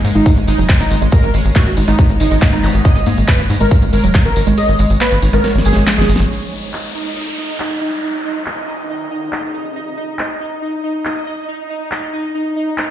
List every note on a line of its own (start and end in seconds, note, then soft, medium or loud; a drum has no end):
0.00 6.31 G#3 medium
0.00 6.33 C#5 medium
0.04 0.11 G#2 loud
0.04 0.11 D#4 medium
0.04 open hi-hat loud
0.04 tambourine medium
0.15 0.22 G#1 medium
0.15 0.24 G#3 loud
0.15 0.28 D#4 loud
0.15 closed hi-hat soft
0.15 tambourine soft
0.26 0.32 F#3 medium
0.26 kick loud
0.26 closed hi-hat medium
0.26 tambourine medium
0.37 0.44 G#1 medium
0.37 closed hi-hat medium
0.37 tambourine soft
0.48 0.55 G#1 loud
0.48 0.54 G#3 medium
0.48 0.61 D#4 loud
0.48 open hi-hat loud
0.48 tambourine loud
0.58 0.65 F#1 medium
0.58 0.65 F#3 loud
0.58 closed hi-hat medium
0.58 tambourine soft
0.69 0.73 A#3 loud
0.69 kick loud
0.69 clap loud
0.69 closed hi-hat medium
0.69 tambourine medium
0.80 0.87 G#1 medium
0.80 0.89 A#3 medium
0.80 0.93 D#4 medium
0.80 closed hi-hat medium
0.80 tambourine soft
0.91 0.98 G#1 loud
0.91 0.97 D#4 medium
0.91 open hi-hat loud
0.91 tambourine medium
1.02 1.08 G#1 medium
1.02 1.11 G#3 loud
1.02 closed hi-hat medium
1.02 tambourine soft
1.12 1.16 G#4 loud
1.12 1.30 A#4 loud
1.12 kick loud
1.12 closed hi-hat medium
1.12 tambourine medium
1.23 1.30 G#1 medium
1.23 closed hi-hat medium
1.23 tambourine soft
1.34 1.41 G#1 loud
1.34 1.43 G#3 medium
1.34 open hi-hat loud
1.34 tambourine medium
1.44 1.52 G#1 medium
1.44 1.54 A#4 medium
1.44 closed hi-hat medium
1.44 tambourine soft
1.55 1.59 A#3 loud
1.55 1.68 F#4 medium
1.55 kick loud
1.55 clap loud
1.55 closed hi-hat medium
1.55 tambourine medium
1.66 1.73 G#1 medium
1.66 closed hi-hat medium
1.66 tambourine soft
1.77 1.84 G#1 loud
1.77 1.83 D#4 loud
1.77 open hi-hat loud
1.77 tambourine medium
1.88 1.95 G#1 medium
1.88 1.94 G#3 loud
1.88 1.95 B3 medium
1.88 2.01 D#4 loud
1.88 closed hi-hat medium
1.88 tambourine soft
1.98 2.05 G#3 medium
1.98 2.06 B3 medium
1.98 kick loud
1.98 closed hi-hat medium
1.98 tambourine medium
2.09 2.16 G#1 medium
2.09 closed hi-hat medium
2.09 tambourine soft
2.20 2.27 G#1 loud
2.20 2.26 G#3 medium
2.20 2.33 D#4 loud
2.20 open hi-hat loud
2.20 tambourine loud
2.31 2.38 G#1 medium
2.31 2.37 G#3 loud
2.31 closed hi-hat medium
2.31 tambourine soft
2.42 2.46 A#3 loud
2.42 kick loud
2.42 clap loud
2.42 closed hi-hat medium
2.42 tambourine medium
2.53 2.60 G#1 medium
2.53 2.56 G#3 medium
2.53 2.96 B3 medium
2.53 2.66 D#4 medium
2.53 closed hi-hat medium
2.53 tambourine soft
2.63 2.70 G#1 loud
2.63 open hi-hat loud
2.63 tambourine medium
2.63 zap medium
2.74 2.81 G#1 medium
2.74 closed hi-hat medium
2.74 tambourine soft
2.85 2.89 G#3 medium
2.85 3.02 D#5 loud
2.85 kick loud
2.85 closed hi-hat medium
2.85 tambourine soft
2.96 3.03 G#1 medium
2.96 closed hi-hat medium
2.96 tambourine soft
3.06 3.14 G#2 loud
3.06 3.16 A#3 loud
3.06 open hi-hat loud
3.06 tambourine medium
3.17 3.24 G#1 medium
3.17 closed hi-hat medium
3.17 tambourine soft
3.28 3.34 G#3 medium
3.28 3.41 B4 medium
3.28 kick loud
3.28 clap loud
3.28 closed hi-hat medium
3.28 tambourine soft
3.39 3.46 G#1 medium
3.39 3.48 A#3 medium
3.39 closed hi-hat medium
3.39 tambourine soft
3.50 3.57 G#2 loud
3.50 3.56 D#4 medium
3.50 open hi-hat loud
3.50 tambourine medium
3.60 3.67 G#1 medium
3.60 3.70 G#3 loud
3.60 3.74 A#4 medium
3.60 closed hi-hat medium
3.60 tambourine soft
3.71 3.78 F#3 medium
3.71 kick loud
3.71 closed hi-hat medium
3.71 tambourine soft
3.82 3.89 G#1 medium
3.82 closed hi-hat medium
3.82 tambourine soft
3.93 4.00 G#1 loud
3.93 3.99 G#3 medium
3.93 4.06 A#4 loud
3.93 open hi-hat loud
3.93 tambourine loud
4.04 4.11 F#1 medium
4.04 4.10 F#3 loud
4.04 closed hi-hat medium
4.04 tambourine soft
4.14 4.18 A#3 loud
4.14 kick loud
4.14 clap loud
4.14 closed hi-hat medium
4.14 tambourine medium
4.25 4.32 G#1 medium
4.25 4.35 A#3 medium
4.25 4.38 A#4 medium
4.25 closed hi-hat medium
4.25 tambourine soft
4.36 4.43 G#1 loud
4.36 4.42 D#4 medium
4.36 open hi-hat loud
4.36 tambourine medium
4.47 4.54 G#1 medium
4.47 4.56 G#3 loud
4.47 closed hi-hat medium
4.47 tambourine soft
4.58 4.61 G#4 loud
4.58 4.75 D#5 loud
4.58 closed hi-hat medium
4.58 tambourine medium
4.68 4.75 G#1 medium
4.68 closed hi-hat medium
4.68 tambourine soft
4.79 4.86 G#1 loud
4.79 4.89 G#3 medium
4.79 open hi-hat loud
4.79 tambourine medium
4.90 4.97 G#1 medium
4.90 4.99 A#4 medium
4.90 closed hi-hat medium
4.90 tambourine soft
5.01 5.05 A#3 loud
5.01 5.14 B4 medium
5.01 clap loud
5.01 closed hi-hat medium
5.01 tambourine medium
5.11 5.19 G#1 medium
5.11 closed hi-hat medium
5.11 tambourine soft
5.22 5.29 G#1 loud
5.22 5.29 D#4 loud
5.22 open hi-hat loud
5.22 tambourine medium
5.33 5.40 G#1 medium
5.33 5.39 G#3 loud
5.33 5.40 B3 medium
5.33 5.46 A#4 loud
5.33 closed hi-hat medium
5.33 tambourine soft
5.44 5.50 G#3 medium
5.44 5.51 B3 medium
5.44 snare medium
5.44 closed hi-hat medium
5.44 tambourine medium
5.55 5.62 G#1 medium
5.55 snare medium
5.55 closed hi-hat medium
5.55 tambourine soft
5.65 5.73 G#1 loud
5.65 5.72 G#3 medium
5.65 5.79 G#4 medium
5.65 open hi-hat loud
5.65 tambourine medium
5.73 5.83 G#1 medium
5.73 5.83 G#3 loud
5.73 snare medium
5.73 closed hi-hat medium
5.73 tambourine soft
5.87 5.91 A#3 loud
5.87 snare medium
5.87 clap loud
5.87 closed hi-hat medium
5.87 tambourine medium
5.98 6.05 G#1 medium
5.98 6.02 G#3 medium
5.98 6.11 G#4 loud
5.98 snare loud
5.98 closed hi-hat medium
5.98 tambourine soft
6.09 6.16 G#1 loud
6.09 open hi-hat loud
6.09 tambourine medium
6.16 6.26 G#1 loud
6.16 snare loud
6.16 closed hi-hat medium
6.16 tambourine soft
6.30 12.91 D#4 medium
6.30 12.91 D#5 medium
6.30 crash medium
6.30 downlifter medium
6.73 clap loud
7.60 clap loud
8.46 clap loud
9.33 clap loud
10.19 clap loud
11.05 clap loud
11.91 clap loud
12.78 clap loud